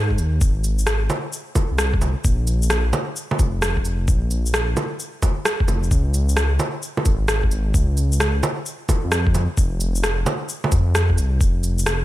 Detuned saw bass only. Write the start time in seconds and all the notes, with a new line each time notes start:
Already playing: G#2
0.18 D#2
0.41 G#1
1.71 C2
2.25 A#1
3.39 F1
3.85 F1
4.08 A#1
5.68 F1
5.91 C#2
7.06 G#1
7.51 G#1
7.74 C#2
9.04 F2
9.58 F1
10.72 F2
11.18 C2
11.41 F1